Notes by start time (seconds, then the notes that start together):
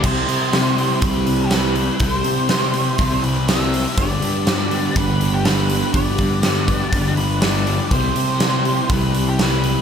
0.03 C2 C3 G3 C4 E4 G4 C5 E5 G5, kick, crash
0.27 C3 G3 C4, open hi-hat
0.52 C3 G3 C4, snare, open hi-hat
0.77 G3 C4, open hi-hat
1.01 C2 C3 G3 C4 B4, kick, open hi-hat
1.26 G3 C4, open hi-hat
1.42 G4
1.51 C3 G3 C4 B4, snare, open hi-hat
1.75 G3 C4, open hi-hat
2.00 C2 C3 G3 C4 B4, kick, open hi-hat
2.12 C5
2.24 C3 G3 C4, open hi-hat
2.49 C3 G3 C4, snare, open hi-hat
2.74 G3 C4, open hi-hat
2.98 C2 C3 G3 C4, kick, open hi-hat
3.23 G3 C4 B4, open hi-hat
3.47 C3 G3 C4 E5, snare, open hi-hat
3.73 G3 C4, open hi-hat
3.97 G1 G2 D3 G3 B3 G4 D5 F#5 B5, kick, open hi-hat
4.21 G2 D3 G3, open hi-hat
4.46 G2 D3 G3, snare, open hi-hat
4.71 D3 G3, open hi-hat
4.95 G1 G2 D3 G3 B4, kick, open hi-hat
5.20 D3 G3, open hi-hat
5.34 G4
5.45 G2 D3 G3 B4, snare, open hi-hat
5.70 D3 G3, open hi-hat
5.93 G1 G2 D3 G3 D5, kick, open hi-hat
6.18 G2 D3 G3, kick, open hi-hat
6.43 G2 D3 G3, snare, open hi-hat
6.68 D3 G3, kick, open hi-hat
6.92 G1 G2 D3 G3, kick, open hi-hat
7.17 D3 G3 B4, open hi-hat
7.41 G2 D3 G3 D5, snare, open hi-hat
7.66 D3 G3, open hi-hat
7.90 C2 C3 G3 C4 E4 G4 C5 E5 G5, kick, open hi-hat
8.15 C3 G3 C4, open hi-hat
8.40 C3 G3 C4, snare, open hi-hat
8.64 G3 C4, open hi-hat
8.90 C2 C3 G3 C4 B4, kick, open hi-hat
9.14 G3 C4, open hi-hat
9.28 G4
9.38 C3 G3 C4 B4, snare, open hi-hat
9.63 G3 C4, open hi-hat